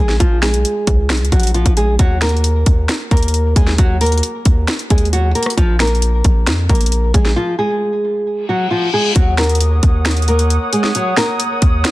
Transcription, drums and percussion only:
0.09 snare medium
0.20 kick loud
0.20 closed hi-hat medium
0.43 finger snap medium
0.43 cross-stick medium
0.43 snare loud
0.43 closed hi-hat soft
0.43 open hi-hat medium
0.54 closed hi-hat medium
0.65 closed hi-hat medium
0.87 kick medium
0.87 closed hi-hat medium
1.10 finger snap loud
1.10 snare loud
1.10 closed hi-hat soft
1.17 closed hi-hat medium
1.25 closed hi-hat medium
1.32 kick loud
1.32 closed hi-hat medium
1.40 closed hi-hat medium
1.43 closed hi-hat medium
1.47 closed hi-hat medium
1.54 closed hi-hat soft
1.66 kick medium
1.66 closed hi-hat medium
1.77 closed hi-hat medium
1.99 kick loud
1.99 closed hi-hat medium
2.22 finger snap medium
2.22 snare medium
2.22 closed hi-hat medium
2.22 open hi-hat medium
2.29 closed hi-hat soft
2.37 closed hi-hat soft
2.44 closed hi-hat medium
2.66 kick medium
2.66 closed hi-hat medium
2.89 finger snap medium
2.89 snare loud
2.89 closed hi-hat medium
3.11 kick loud
3.11 closed hi-hat soft
3.17 closed hi-hat medium
3.23 closed hi-hat medium
3.28 closed hi-hat medium
3.34 closed hi-hat medium
3.56 kick medium
3.56 closed hi-hat medium
3.67 snare medium
3.78 kick loud
3.78 closed hi-hat medium
4.01 closed hi-hat medium
4.01 open hi-hat medium
4.06 closed hi-hat medium
4.12 closed hi-hat medium
4.18 closed hi-hat medium
4.23 closed hi-hat medium
4.45 kick medium
4.45 closed hi-hat medium
4.68 finger snap loud
4.68 snare loud
4.68 closed hi-hat medium
4.79 closed hi-hat medium
4.90 kick loud
4.90 closed hi-hat medium
4.98 closed hi-hat medium
5.05 closed hi-hat soft
5.13 closed hi-hat medium
5.35 closed hi-hat medium
5.43 cross-stick medium
5.43 closed hi-hat medium
5.50 closed hi-hat medium
5.58 kick loud
5.58 closed hi-hat medium
5.80 finger snap medium
5.80 snare medium
5.80 closed hi-hat medium
5.80 open hi-hat medium
5.87 closed hi-hat medium
5.95 closed hi-hat soft
6.02 closed hi-hat medium
6.24 kick medium
6.24 closed hi-hat medium
6.47 finger snap medium
6.47 snare loud
6.47 closed hi-hat medium
6.69 kick loud
6.69 closed hi-hat soft
6.75 closed hi-hat medium
6.81 closed hi-hat medium
6.86 closed hi-hat medium
6.92 closed hi-hat medium
7.14 kick medium
7.14 closed hi-hat medium
7.25 snare medium
9.16 kick loud
9.16 closed hi-hat medium
9.38 finger snap medium
9.38 snare loud
9.38 closed hi-hat soft
9.44 closed hi-hat soft
9.49 closed hi-hat medium
9.55 closed hi-hat medium
9.61 closed hi-hat medium
9.83 kick medium
9.83 closed hi-hat medium
10.05 finger snap medium
10.05 snare loud
10.05 closed hi-hat medium
10.11 closed hi-hat medium
10.17 closed hi-hat medium
10.22 closed hi-hat soft
10.28 closed hi-hat medium
10.39 closed hi-hat medium
10.50 closed hi-hat medium
10.73 closed hi-hat medium
10.84 snare medium
10.95 closed hi-hat medium
11.17 finger snap medium
11.17 snare loud
11.17 open hi-hat medium
11.40 closed hi-hat medium
11.62 kick medium
11.62 closed hi-hat medium
11.85 finger snap loud
11.85 snare loud
11.85 closed hi-hat medium

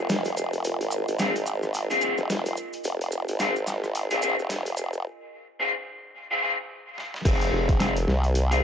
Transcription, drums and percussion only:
0.09 snare loud
0.09 closed hi-hat medium
0.09 maracas medium
0.25 closed hi-hat medium
0.25 maracas soft
0.37 maracas medium
0.53 closed hi-hat soft
0.53 maracas soft
0.64 closed hi-hat medium
0.64 maracas soft
0.81 closed hi-hat soft
0.91 maracas medium
1.08 closed hi-hat soft
1.08 maracas soft
1.19 snare loud
1.19 closed hi-hat medium
1.19 maracas medium
1.36 closed hi-hat soft
1.36 maracas soft
1.46 maracas medium
1.63 cross-stick soft
1.63 maracas soft
1.74 closed hi-hat medium
1.74 maracas medium
1.90 closed hi-hat medium
1.90 maracas soft
2.01 maracas medium
2.18 cross-stick soft
2.18 maracas soft
2.30 snare loud
2.30 closed hi-hat medium
2.30 maracas soft
2.46 closed hi-hat medium
2.46 maracas soft
2.57 maracas medium
2.73 closed hi-hat soft
2.73 maracas soft
2.84 closed hi-hat medium
2.84 maracas soft
3.01 closed hi-hat soft
3.12 maracas medium
3.28 closed hi-hat soft
3.28 maracas soft
3.39 snare loud
3.39 closed hi-hat medium
3.39 maracas medium
3.56 maracas soft
3.67 snare medium
3.67 maracas medium
3.84 cross-stick soft
3.84 maracas soft
3.95 closed hi-hat medium
3.95 maracas soft
4.11 closed hi-hat medium
4.11 maracas soft
4.22 maracas medium
4.39 maracas soft
4.50 snare loud
4.50 closed hi-hat medium
4.50 maracas soft
4.66 closed hi-hat medium
4.66 maracas soft
4.77 maracas medium
4.93 maracas soft
6.98 snare medium
7.14 snare medium
7.25 kick loud
7.25 closed hi-hat medium
7.25 crash loud
7.38 closed hi-hat soft
7.41 closed hi-hat medium
7.69 kick loud
7.69 closed hi-hat soft
7.80 snare loud
7.80 closed hi-hat medium
7.97 closed hi-hat medium
8.08 snare medium
8.24 closed hi-hat soft
8.35 closed hi-hat medium
8.52 closed hi-hat medium

